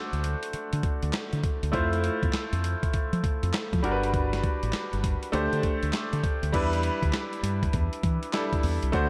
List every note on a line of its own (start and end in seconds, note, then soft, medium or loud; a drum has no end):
0.00 1.69 A3 medium
0.00 1.69 D4 medium
0.00 1.70 F#4 medium
0.00 1.70 C5 medium
0.13 0.34 D2 medium
0.13 closed hi-hat soft
0.24 closed hi-hat medium
0.43 closed hi-hat medium
0.53 muted fingered electric bass stroke soft
0.53 closed hi-hat medium
0.73 0.80 D3 medium
0.73 closed hi-hat medium
0.83 kick medium
0.83 closed hi-hat medium
1.03 1.10 D2 medium
1.03 closed hi-hat soft
1.13 snare loud
1.13 clap medium
1.13 closed hi-hat medium
1.33 1.40 D3 medium
1.33 closed hi-hat soft
1.44 kick medium
1.44 closed hi-hat medium
1.63 1.70 D2 medium
1.63 closed hi-hat soft
1.72 2.09 F2 loud
1.72 3.79 A3 medium
1.72 3.79 E4 medium
1.72 3.79 F4 medium
1.72 3.80 C5 medium
1.72 kick loud
1.72 closed hi-hat medium
1.93 closed hi-hat medium
2.04 closed hi-hat medium
2.23 2.30 E2 medium
2.23 kick medium
2.23 closed hi-hat soft
2.33 muted fingered electric bass stroke soft
2.33 snare loud
2.33 clap medium
2.33 closed hi-hat medium
2.53 2.74 F2 medium
2.53 closed hi-hat soft
2.64 closed hi-hat medium
2.83 kick medium
2.83 closed hi-hat medium
2.94 muted fingered electric bass stroke soft
2.94 kick medium
2.94 closed hi-hat medium
3.13 3.20 F3 loud
3.13 closed hi-hat medium
3.24 kick medium
3.24 closed hi-hat medium
3.43 3.51 F2 medium
3.43 closed hi-hat soft
3.54 snare loud
3.54 clap medium
3.54 closed hi-hat medium
3.73 3.80 F3 loud
3.73 kick medium
3.73 closed hi-hat medium
3.83 4.40 G1 loud
3.83 5.30 G3 medium
3.83 5.30 D4 medium
3.83 5.31 F#4 medium
3.83 3.93 A#4 medium
3.83 closed hi-hat medium
3.91 5.34 B4 medium
4.03 closed hi-hat medium
4.14 kick loud
4.14 closed hi-hat medium
4.33 snare medium
4.33 closed hi-hat medium
4.44 kick medium
4.44 closed hi-hat medium
4.63 4.70 A1 medium
4.63 closed hi-hat medium
4.73 snare loud
4.73 clap medium
4.73 closed hi-hat medium
4.93 5.14 G1 medium
4.93 closed hi-hat soft
5.04 kick medium
5.04 closed hi-hat medium
5.23 closed hi-hat medium
5.32 5.47 D2 loud
5.32 6.50 A3 medium
5.32 6.51 D4 medium
5.32 6.51 G4 medium
5.32 6.52 C5 medium
5.32 closed hi-hat medium
5.53 5.60 D3 medium
5.53 closed hi-hat soft
5.63 kick medium
5.63 closed hi-hat medium
5.83 5.90 D2 medium
5.83 closed hi-hat soft
5.93 snare loud
5.93 clap medium
5.93 closed hi-hat medium
6.13 6.21 D3 medium
6.13 closed hi-hat medium
6.24 kick medium
6.24 closed hi-hat medium
6.43 6.50 D2 medium
6.43 closed hi-hat medium
6.52 6.89 E2 loud
6.52 8.29 G3 medium
6.52 8.30 D4 medium
6.52 8.30 E4 medium
6.52 8.31 B4 medium
6.52 kick loud
6.52 closed hi-hat medium
6.52 crash loud
6.73 closed hi-hat medium
6.83 closed hi-hat medium
7.03 7.10 D2 medium
7.03 kick medium
7.03 closed hi-hat medium
7.13 snare loud
7.13 clap medium
7.13 closed hi-hat medium
7.33 closed hi-hat soft
7.43 7.65 G2 medium
7.43 closed hi-hat medium
7.63 kick medium
7.63 closed hi-hat medium
7.73 7.87 E2 medium
7.73 kick medium
7.73 closed hi-hat medium
7.93 closed hi-hat medium
8.03 8.17 E3 loud
8.03 kick medium
8.03 closed hi-hat medium
8.23 closed hi-hat medium
8.33 8.93 G3 medium
8.33 8.92 D4 soft
8.33 8.94 E4 medium
8.33 8.94 A4 medium
8.33 snare loud
8.33 clap medium
8.33 closed hi-hat medium
8.53 kick medium
8.53 closed hi-hat soft
8.63 8.77 E2 medium
8.63 open hi-hat medium
8.83 8.91 C2 medium
8.83 closed hi-hat medium
8.92 9.09 D2 loud
8.92 9.09 A3 medium
8.92 9.09 D4 medium
8.92 9.09 F#4 medium
8.92 9.09 C5 medium
8.92 kick loud
8.92 closed hi-hat medium